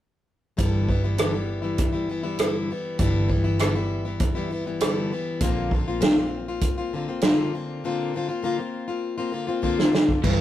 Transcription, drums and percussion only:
0.58 kick, closed hi-hat
0.89 kick
1.18 cross-stick, closed hi-hat
1.78 kick, closed hi-hat
2.39 cross-stick, closed hi-hat
2.99 kick, closed hi-hat
3.30 kick
3.59 cross-stick, closed hi-hat
4.20 kick, closed hi-hat
4.80 cross-stick, closed hi-hat
5.41 kick, closed hi-hat
5.71 kick
6.02 snare, closed hi-hat
6.61 kick, closed hi-hat
7.21 snare, closed hi-hat
9.63 kick
9.79 snare
9.94 snare
10.09 kick
10.24 kick, crash

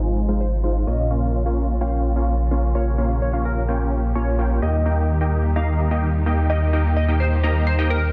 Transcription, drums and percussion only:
0.18 cabasa
0.64 cabasa
1.11 cabasa
1.58 cabasa
2.05 cabasa
2.29 cabasa
2.52 cabasa
2.99 cabasa
3.22 cabasa
3.46 cabasa
3.57 cabasa
3.69 cabasa
3.93 cabasa
4.04 cabasa
4.28 cabasa
4.40 cabasa
4.51 cabasa
4.86 cabasa
4.98 cabasa
5.10 cabasa
5.33 cabasa
5.45 cabasa
5.80 cabasa
5.92 cabasa
6.04 cabasa
6.27 cabasa
6.39 cabasa
6.50 cabasa
6.74 cabasa
6.85 cabasa
6.97 cabasa
7.21 cabasa
7.32 cabasa
7.44 cabasa
7.56 cabasa
7.68 cabasa
7.79 cabasa
7.91 cabasa

